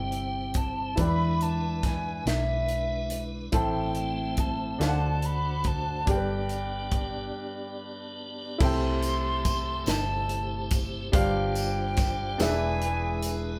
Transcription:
Already playing: G1 C3 G3 C4 E4 G4 C5 G5
0.12 closed hi-hat
0.54 A5, kick, closed hi-hat
0.96 E2 E3 G#3 D4 E4 B4 D5 B5, kick, closed hi-hat
1.01 G5
1.07 B5
1.41 A5, closed hi-hat
1.83 G#5, kick, snare, closed hi-hat
2.26 B1 E5, snare, closed hi-hat
2.68 closed hi-hat
3.10 closed hi-hat
3.52 A1 A2 A3 C4 E4 A4 B4 C5 G5 A5, kick, closed hi-hat
3.60 C5
3.95 closed hi-hat
4.37 A5, kick, closed hi-hat
4.78 D2 D3 A3 D4 F#4 A4 C5 F5, snare, closed hi-hat
4.83 A5
4.88 F#5
5.22 B5, closed hi-hat
5.64 A5, kick, closed hi-hat
6.06 G1 G2 B3 D4 G4 A4 D5, kick, closed hi-hat
6.10 G4 G5
6.15 B4
6.49 closed hi-hat
6.92 kick, closed hi-hat
8.58 C2 C3 A3 E4 G4 A4 C5, kick, crash
8.63 G5 C6
9.03 closed hi-hat, tambourine
9.45 kick, closed hi-hat, tambourine
9.86 G1 A5, snare, closed hi-hat, tambourine
10.29 closed hi-hat
10.71 kick, closed hi-hat, tambourine
11.12 G1 G2 G3 D4 F4 G4 C5 F5, kick, closed hi-hat
11.17 G5
11.55 closed hi-hat, tambourine
11.97 kick, snare, closed hi-hat, tambourine
12.38 E1 E3 G#3 D4 E4 G#4 B4 E5, snare, closed hi-hat, tambourine
12.43 G#5
12.82 closed hi-hat
13.23 closed hi-hat, tambourine

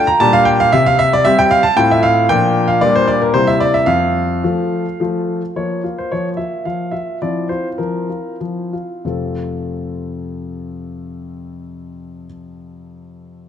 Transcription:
0.07 A#5
0.20 A#2 G3 D4 G4 A5
0.33 F5
0.45 G5
0.60 F5
0.72 C3 E5
0.86 F5
0.99 E5
1.13 D5
1.25 G3 C4 G4 E5
1.39 G5
1.51 F5
1.63 A5
1.77 A2 A3 C4 F4 G5
1.91 E5
2.03 F5
2.29 A#2 F3 A#3 D4 G5
2.68 F5
2.81 A#2 G3 A#3 D4 D5
2.96 C5
3.08 D5
3.22 A#4
3.33 C3 G3 A#3 E4 C5
3.47 E5
3.60 D5
3.74 E5
3.86 F2 F5
4.44 F3 A3 F4
5.00 F3 A3 F4
5.56 F3 A#3 F4 C#5
5.84 F4
5.98 C5
6.12 F3 C#5
6.37 F4 E5
6.65 F3 F5
6.91 F4 E5
7.22 F3 C4 E4 D5
7.49 F4 C5
7.78 F3 A#4
8.10 F4
8.41 F3
8.73 F4
9.05 F2 C3 A3 C4 F4 A4

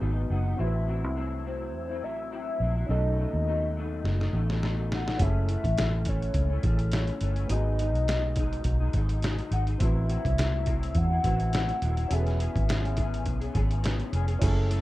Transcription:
Already playing: B3 D#4 F#4 G#4
0.00 G#1 G#2 F#3 B3 D#4
0.29 F#1 G#2 F#3 B3 D#4 F#5
0.44 F#3 B3 D#4
0.57 A1 A2 F#3 C4 E4 F#4 E5
0.62 B4
0.86 A2 F#3 C4 E4
1.04 C2
1.15 A2 F#3 C4 E4
1.44 A2 F#3 C4 E4 C5
1.74 E2 C5
1.89 F#3 C4 E4
2.02 A1 A2 F#3 C4 E4 E5
2.31 A2 F#3 C4 E4 E5
2.60 A#1 A2 F#3 C4 E4
2.75 F#3 C4 E4
2.86 B1 B2 F#3 A3 C#4 D#4 F#4 D#5
2.91 D#4 A4
3.17 B2 F#3 A3 D#4
3.33 D#2
3.47 B2 F#3 A3 D#4
3.76 B2 F#3 A3 D#4
4.04 F#1, snare
4.20 F#3 A3 D#4, snare
4.32 A1 B2 F#3 A3 D#4
4.50 snare
4.61 B2 F#3 A3 D#4, snare
4.90 B2 F#3 A3 D#4 F#5, snare
5.06 F#3 A3 D#4, snare
5.17 F#1 F#2 C#4 E4 G#4, kick, closed hi-hat
5.21 E3 A3 C#4 A4 E5
5.48 F#2 E3 A3 C#4, closed hi-hat
5.64 A1, kick, closed hi-hat
5.77 F#2 E3 A3 C#4, snare, closed hi-hat
6.05 F#2 E3 A3 C#4 C#5, kick, closed hi-hat
6.22 closed hi-hat
6.34 C#2, kick, closed hi-hat
6.50 E3 A3 C#4
6.62 A1 F#2 E3 A3 C#4 E4 G#4 A4, kick, closed hi-hat
6.66 C#4
6.79 closed hi-hat
6.92 F#2 E3 A3 C#4 C#5, snare, closed hi-hat
7.07 closed hi-hat
7.21 G1 F#2 E3 A3 C#4, closed hi-hat
7.36 E3 A3 C#4, closed hi-hat
7.47 G#1 G#2 F#3 G#3 B3 D#4 F#4, closed hi-hat
7.51 D#4 G#4 D#5
7.78 G#2 F#3 G#3 D#4, closed hi-hat
7.94 B1, closed hi-hat
8.07 G#2 F#3 G#3 D#4, snare, closed hi-hat
8.36 G#2 F#3 G#3 D#4, kick, closed hi-hat
8.53 closed hi-hat
8.64 B1, kick, closed hi-hat
8.80 F#3 G#3 D#4
8.93 G#1 G#2 F#3 G#3 D#4, kick, closed hi-hat
9.09 closed hi-hat
9.22 G#2 F#3 G#3 D#4, snare, closed hi-hat
9.38 closed hi-hat
9.50 G#1 G#2 F#3 G#3 D#4 F#5, closed hi-hat
9.66 F#3 G#3 D#4, closed hi-hat
9.78 A1 A2 F#3 C4 E4 F#4, kick, closed hi-hat
9.82 E4 B4 E5
10.08 A2 F#3 C4 E4, closed hi-hat
10.25 C2, kick, closed hi-hat
10.37 A2 F#3 C4 E4, snare, closed hi-hat
10.66 A2 F#3 C4 E4, kick, closed hi-hat
10.83 closed hi-hat
10.95 E2 F#5, kick, closed hi-hat
11.10 F#3 C4 E4
11.23 A1 A2 F#3 C4 E4 F#4 B4, kick, closed hi-hat
11.28 E4
11.40 closed hi-hat
11.53 A2 F#3 C4 E4, snare, closed hi-hat
11.69 closed hi-hat
11.82 D#1 A2 F#3 C4 E4, closed hi-hat
11.97 F#3 C4 E4, closed hi-hat
12.08 E1 E3 B3 C#4 F#4 G#4, closed hi-hat
12.12 G#4 A4 E5
12.20 B4
12.27 snare, closed hi-hat
12.38 E3 B3 C#4 G#4, closed hi-hat
12.55 G#1, kick, closed hi-hat
12.68 E3 B3 C#4 G#4, snare, closed hi-hat
12.85 closed hi-hat
12.96 E3 B3 C#4 G#4, kick, closed hi-hat
13.14 closed hi-hat
13.26 B1, kick, closed hi-hat
13.41 B3 C#4 G#4, closed hi-hat
13.53 G#1 E3 B3 C#4 G#4, kick, closed hi-hat
13.71 closed hi-hat
13.82 E3 B3 C#4 G#4, snare, closed hi-hat
14.00 closed hi-hat
14.12 F1 E3 B3 C#4 G#4, closed hi-hat
14.27 B3 C#4 G#4, closed hi-hat
14.39 F#1 F#2 E3 A3 C#4 E4 G#4, kick, closed hi-hat, crash
14.44 A4
14.69 F#2 E3 A3 C#4, closed hi-hat

